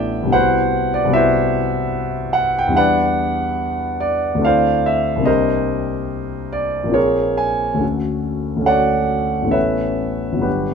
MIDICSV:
0, 0, Header, 1, 2, 480
1, 0, Start_track
1, 0, Tempo, 809717
1, 209, Time_signature, 3, 2, 24, 8
1, 1650, Tempo, 832178
1, 3570, Tempo, 855920
1, 5010, Tempo, 891530
1, 6119, End_track
2, 0, Start_track
2, 0, Title_t, "Grand piano"
2, 0, Program_c, 0, 0
2, 0, Control_c, 0, 64, 127
2, 0, Note_on_c, 0, 33, 45
2, 0, Note_on_c, 0, 57, 36
2, 0, Note_on_c, 0, 59, 41
2, 0, Note_on_c, 0, 62, 36
2, 0, Note_on_c, 0, 64, 39
2, 0, Note_on_c, 0, 74, 65
2, 0, Note_on_c, 0, 76, 62
2, 0, Note_on_c, 0, 79, 83
2, 138, Note_on_c, 0, 36, 41
2, 154, Note_on_c, 0, 55, 36
2, 155, Note_off_c, 0, 59, 0
2, 164, Note_off_c, 0, 33, 0
2, 164, Note_on_c, 0, 59, 37
2, 170, Note_off_c, 0, 64, 0
2, 174, Note_off_c, 0, 57, 0
2, 179, Note_on_c, 0, 64, 38
2, 184, Note_off_c, 0, 62, 0
2, 186, Note_off_c, 0, 74, 0
2, 188, Note_off_c, 0, 76, 0
2, 191, Note_on_c, 0, 66, 36
2, 192, Note_on_c, 0, 78, 80
2, 197, Note_on_c, 0, 72, 62
2, 201, Note_on_c, 0, 71, 65
2, 208, Note_off_c, 0, 79, 0
2, 218, Control_c, 0, 64, 0
2, 324, Control_c, 0, 64, 127
2, 537, Note_off_c, 0, 72, 0
2, 539, Note_off_c, 0, 71, 0
2, 556, Note_on_c, 0, 74, 72
2, 558, Note_off_c, 0, 78, 0
2, 614, Note_off_c, 0, 36, 0
2, 623, Note_on_c, 0, 36, 47
2, 627, Note_off_c, 0, 55, 0
2, 636, Note_on_c, 0, 55, 39
2, 644, Note_off_c, 0, 59, 0
2, 651, Note_off_c, 0, 64, 0
2, 653, Note_on_c, 0, 59, 39
2, 660, Note_on_c, 0, 64, 39
2, 662, Note_off_c, 0, 66, 0
2, 671, Note_on_c, 0, 66, 42
2, 672, Note_on_c, 0, 76, 84
2, 682, Note_off_c, 0, 74, 0
2, 682, Note_on_c, 0, 71, 63
2, 685, Note_on_c, 0, 72, 64
2, 1381, Note_on_c, 0, 78, 82
2, 1384, Note_off_c, 0, 71, 0
2, 1386, Note_off_c, 0, 72, 0
2, 1403, Note_off_c, 0, 76, 0
2, 1515, Note_off_c, 0, 78, 0
2, 1533, Note_on_c, 0, 79, 75
2, 1585, Note_on_c, 0, 40, 46
2, 1586, Note_off_c, 0, 55, 0
2, 1594, Note_off_c, 0, 36, 0
2, 1595, Note_on_c, 0, 55, 37
2, 1602, Note_off_c, 0, 59, 0
2, 1610, Note_on_c, 0, 59, 38
2, 1613, Note_off_c, 0, 64, 0
2, 1618, Note_off_c, 0, 66, 0
2, 1624, Note_on_c, 0, 62, 37
2, 1637, Note_on_c, 0, 64, 35
2, 1639, Note_on_c, 0, 78, 81
2, 1643, Note_on_c, 0, 71, 67
2, 1645, Note_on_c, 0, 74, 60
2, 1651, Note_off_c, 0, 79, 0
2, 1660, Control_c, 0, 64, 0
2, 1753, Control_c, 0, 64, 127
2, 2342, Note_off_c, 0, 71, 0
2, 2344, Note_off_c, 0, 74, 0
2, 2354, Note_on_c, 0, 74, 73
2, 2364, Note_off_c, 0, 78, 0
2, 2551, Note_off_c, 0, 40, 0
2, 2551, Note_on_c, 0, 38, 42
2, 2556, Note_off_c, 0, 55, 0
2, 2563, Note_off_c, 0, 59, 0
2, 2567, Note_on_c, 0, 57, 37
2, 2570, Note_off_c, 0, 62, 0
2, 2576, Note_off_c, 0, 64, 0
2, 2578, Note_on_c, 0, 60, 37
2, 2590, Note_on_c, 0, 62, 37
2, 2598, Note_off_c, 0, 74, 0
2, 2603, Note_on_c, 0, 64, 37
2, 2608, Note_on_c, 0, 77, 80
2, 2615, Control_c, 0, 64, 0
2, 2615, Note_on_c, 0, 74, 57
2, 2617, Note_on_c, 0, 72, 58
2, 2715, Control_c, 0, 64, 127
2, 2832, Note_off_c, 0, 74, 0
2, 2833, Note_off_c, 0, 72, 0
2, 2845, Note_off_c, 0, 77, 0
2, 2849, Note_on_c, 0, 76, 73
2, 3021, Note_on_c, 0, 36, 41
2, 3033, Note_on_c, 0, 58, 35
2, 3042, Note_off_c, 0, 38, 0
2, 3043, Note_off_c, 0, 60, 0
2, 3050, Note_off_c, 0, 57, 0
2, 3052, Note_on_c, 0, 60, 36
2, 3054, Note_off_c, 0, 62, 0
2, 3063, Note_on_c, 0, 62, 32
2, 3069, Note_off_c, 0, 64, 0
2, 3074, Note_on_c, 0, 67, 35
2, 3075, Note_on_c, 0, 75, 76
2, 3082, Note_on_c, 0, 70, 58
2, 3082, Note_on_c, 0, 72, 58
2, 3087, Note_off_c, 0, 76, 0
2, 3095, Control_c, 0, 64, 0
2, 3197, Control_c, 0, 64, 127
2, 3782, Note_off_c, 0, 72, 0
2, 3783, Note_off_c, 0, 70, 0
2, 3801, Note_off_c, 0, 75, 0
2, 3802, Note_on_c, 0, 74, 69
2, 3976, Note_on_c, 0, 34, 41
2, 3981, Note_off_c, 0, 58, 0
2, 3989, Note_on_c, 0, 58, 33
2, 3992, Note_off_c, 0, 36, 0
2, 3996, Note_off_c, 0, 60, 0
2, 4005, Note_on_c, 0, 60, 34
2, 4012, Note_off_c, 0, 62, 0
2, 4018, Note_off_c, 0, 67, 0
2, 4020, Note_on_c, 0, 65, 34
2, 4032, Note_on_c, 0, 73, 68
2, 4035, Note_on_c, 0, 68, 47
2, 4037, Note_on_c, 0, 70, 51
2, 4043, Note_off_c, 0, 74, 0
2, 4054, Control_c, 0, 64, 0
2, 4146, Control_c, 0, 64, 127
2, 4264, Note_off_c, 0, 68, 0
2, 4265, Note_off_c, 0, 70, 0
2, 4278, Note_on_c, 0, 80, 68
2, 4280, Note_off_c, 0, 73, 0
2, 4478, Note_off_c, 0, 34, 0
2, 4484, Note_on_c, 0, 38, 38
2, 4485, Note_off_c, 0, 58, 0
2, 4493, Note_off_c, 0, 60, 0
2, 4497, Note_on_c, 0, 57, 30
2, 4501, Note_off_c, 0, 65, 0
2, 4513, Note_on_c, 0, 61, 31
2, 4519, Note_on_c, 0, 66, 31
2, 4525, Note_off_c, 0, 80, 0
2, 4533, Note_on_c, 0, 69, 31
2, 4537, Control_c, 0, 64, 0
2, 4616, Control_c, 0, 64, 127
2, 4937, Note_off_c, 0, 38, 0
2, 4945, Note_on_c, 0, 38, 38
2, 4949, Note_off_c, 0, 57, 0
2, 4957, Note_on_c, 0, 57, 33
2, 4961, Note_off_c, 0, 61, 0
2, 4970, Note_on_c, 0, 61, 32
2, 4971, Note_off_c, 0, 66, 0
2, 4980, Note_on_c, 0, 66, 31
2, 4987, Note_off_c, 0, 69, 0
2, 4995, Note_on_c, 0, 69, 32
2, 5000, Note_on_c, 0, 78, 76
2, 5003, Note_on_c, 0, 73, 54
2, 5003, Note_on_c, 0, 74, 55
2, 5410, Note_on_c, 0, 33, 36
2, 5414, Note_off_c, 0, 57, 0
2, 5422, Note_on_c, 0, 57, 30
2, 5433, Note_on_c, 0, 59, 29
2, 5434, Note_off_c, 0, 38, 0
2, 5438, Note_off_c, 0, 61, 0
2, 5446, Note_on_c, 0, 61, 30
2, 5448, Note_off_c, 0, 69, 0
2, 5451, Note_off_c, 0, 66, 0
2, 5455, Note_off_c, 0, 73, 0
2, 5455, Note_off_c, 0, 74, 0
2, 5456, Note_on_c, 0, 69, 30
2, 5459, Note_on_c, 0, 76, 68
2, 5464, Note_on_c, 0, 71, 50
2, 5464, Note_on_c, 0, 73, 47
2, 5475, Note_off_c, 0, 78, 0
2, 5489, Control_c, 0, 64, 0
2, 5586, Control_c, 0, 64, 127
2, 5892, Note_on_c, 0, 31, 36
2, 5904, Note_on_c, 0, 54, 29
2, 5910, Note_off_c, 0, 59, 0
2, 5916, Note_off_c, 0, 33, 0
2, 5918, Note_on_c, 0, 59, 27
2, 5922, Note_off_c, 0, 57, 0
2, 5933, Note_on_c, 0, 62, 26
2, 5935, Note_off_c, 0, 61, 0
2, 5936, Note_off_c, 0, 71, 0
2, 5937, Note_off_c, 0, 73, 0
2, 5940, Note_off_c, 0, 69, 0
2, 5944, Note_on_c, 0, 71, 54
2, 5946, Note_on_c, 0, 66, 39
2, 5948, Note_on_c, 0, 67, 41
2, 5956, Note_off_c, 0, 76, 0
2, 5977, Control_c, 0, 64, 0
2, 6064, Control_c, 0, 64, 127
2, 6119, Note_off_c, 0, 31, 0
2, 6119, Note_off_c, 0, 54, 0
2, 6119, Note_off_c, 0, 59, 0
2, 6119, Note_off_c, 0, 62, 0
2, 6119, Note_off_c, 0, 66, 0
2, 6119, Note_off_c, 0, 67, 0
2, 6119, Note_off_c, 0, 71, 0
2, 6119, End_track
0, 0, End_of_file